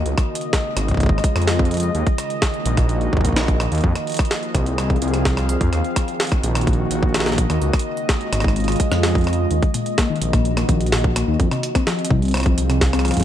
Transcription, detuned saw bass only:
X:1
M:4/4
L:1/16
Q:1/4=127
K:Ebdor
V:1 name="Detuned saw bass" clef=bass
D,, z4 z A,,,4 z F,,4- F,, | E,, z4 z B,,,4 B,,,4- B,,, E,, | F,, z4 z C,,4 C,,4- C,, F,, | E,, z4 z B,,,4 B,,,4- B,,, E,, |
D,, z4 z A,,,4 z F,,4- F,, | E,, z4 z B,,,4 B,,,4- B,,, E,, | F,, z4 z C,,4 C,,4- C,, F,, |]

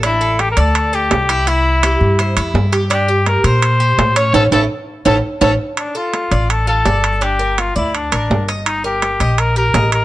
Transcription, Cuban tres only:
X:1
M:4/4
L:1/8
Q:1/4=167
K:Dm
V:1 name="Cuban tres"
D A2 d2 A2 E | E2 G2 c E2 G | D G2 B2 G2 ^C | [^CEA] [CEA] z2 [CEA] z [CEA] z |
z A2 d2 F d2 | D B2 d2 B2 _e- | _e B2 e2 G e2 |]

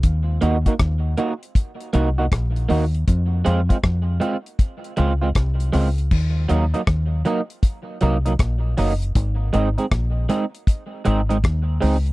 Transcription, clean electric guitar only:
X:1
M:4/4
L:1/16
Q:"Swing 16ths" 1/4=79
K:Ebdor
V:1 name="Clean electric guitar"
z2 [B,EG] [B,EG] z2 [B,EG] z3 [B,EG] [B,EG] z2 [B,EG] z | z2 [A,CF] [A,CF] z2 [A,CF] z3 [A,CF] [A,CF] z2 [A,CF] z | z2 [G,B,E] [G,B,E] z2 [G,B,E] z3 [G,B,E] [G,B,E] z2 [G,B,E] z | z2 [A,CE] [A,CE] z2 [A,CE] z3 [A,CE] [A,CE] z2 [A,CE] z |]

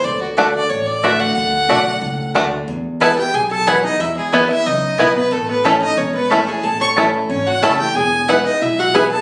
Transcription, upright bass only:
X:1
M:4/4
L:1/8
Q:1/4=182
K:E
V:1 name="Upright bass" clef=bass
=D,,4 A,,,4 | =D,,2 B,,,2 C,,2 D,,2 | E,,4 B,,,4 | E,,4 C,,2 B,,,2 |
A,,,4 E,,,4 | A,,,4 G,,,2 F,,,2 | E,,,4 B,,,4 |]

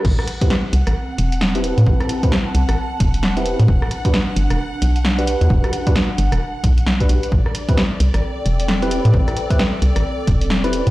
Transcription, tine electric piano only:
X:1
M:4/4
L:1/16
Q:"Swing 16ths" 1/4=132
K:Ador
V:1 name="Tine electric piano"
z3 [CEGB] z8 z [CEGB]3- | [CEGB]3 [CEGB] z8 z [CEGB]3 | z3 [DFGB] z8 z [DFGB]3- | [DFGB]3 [DFGB] z8 z [DFGB]3 |
z3 [CEGB] z8 z [CEGB]3- | [CEGB]3 [CEGB] z8 z [CEGB]3 |]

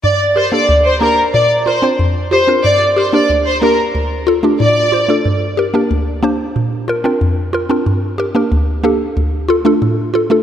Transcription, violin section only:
X:1
M:4/4
L:1/16
Q:1/4=92
K:Gm
V:1 name="Violin section"
d z c d z c B z d z c z3 c z | d z c d z c B z4 z d3 z | z16 | z16 |]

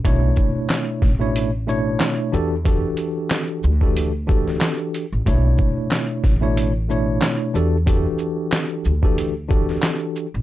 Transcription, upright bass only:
X:1
M:4/4
L:1/16
Q:"Swing 16ths" 1/4=92
K:Edor
V:1 name="Upright bass" clef=bass
B,,,2 z4 A,,,6 z2 E,,2- | E,,2 z4 D,,6 z3 A,,, | B,,,2 z4 A,,,6 z2 E,,2- | E,,2 z4 D,,6 z3 A,,, |]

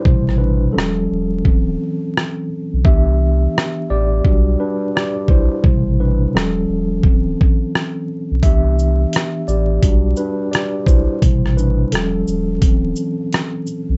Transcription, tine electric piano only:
X:1
M:4/4
L:1/8
Q:"Swing 16ths" 1/4=86
K:Dmix
V:1 name="Tine electric piano"
[Ec] [DB] A4- A z | [Ge]3 [Gd]2 [DB] [Gd] [Ec]- | [Ec] [DB] A4- A z | [Ge]3 [Gd]2 [DB] [Gd] [Ec]- |
[Ec] [DB] A4- A z |]
V:2 name="Tine electric piano" clef=bass
[B,,C,G,]2 [^E,G,^C] z [=E,F,=C]3 z | [E,B,D] z3 [G,DF] z3 | [B,,C,G,]2 [^E,G,^C]2 [=E,F,=C]4 | [E,B,D]3 z [G,DF] z3 |
[B,,C,G,]2 [^E,G,^C]2 [=E,F,=C] z3 |]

